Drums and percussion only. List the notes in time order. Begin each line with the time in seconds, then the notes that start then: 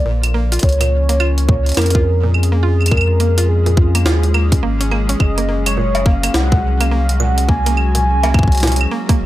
0.23 closed hi-hat, claves
0.52 closed hi-hat
0.59 kick, closed hi-hat
0.63 closed hi-hat
0.69 closed hi-hat
0.72 closed hi-hat
0.81 closed hi-hat, claves
1.09 closed hi-hat
1.20 claves
1.38 closed hi-hat
1.49 kick
1.66 closed hi-hat
1.69 closed hi-hat
1.72 closed hi-hat
1.74 snare, closed hi-hat
1.77 closed hi-hat, claves
1.82 closed hi-hat
1.86 closed hi-hat
1.90 closed hi-hat
1.95 kick
2.34 claves
2.43 closed hi-hat
2.81 claves
2.86 closed hi-hat, claves
2.91 kick, claves
2.97 claves
3.01 claves
3.20 closed hi-hat
3.38 closed hi-hat
3.66 closed hi-hat
3.77 kick
3.95 closed hi-hat, claves
4.06 snare
4.23 closed hi-hat
4.34 claves
4.52 kick, closed hi-hat
4.81 closed hi-hat
4.91 claves
5.09 closed hi-hat
5.20 kick, claves
5.38 closed hi-hat
5.66 closed hi-hat, claves
5.95 closed hi-hat, cowbell
6.06 kick
6.23 closed hi-hat, claves
6.34 snare
6.52 kick
6.81 closed hi-hat, claves
7.09 closed hi-hat
7.20 claves
7.38 closed hi-hat
7.49 kick
7.66 closed hi-hat
7.77 claves
7.95 closed hi-hat
8.23 closed hi-hat, cowbell
8.34 kick, claves
8.39 kick
8.43 kick
8.48 kick
8.52 closed hi-hat
8.55 closed hi-hat
8.57 closed hi-hat
8.60 snare, closed hi-hat
8.63 closed hi-hat
8.67 closed hi-hat
8.72 closed hi-hat
8.76 closed hi-hat
8.81 claves
9.09 kick, closed hi-hat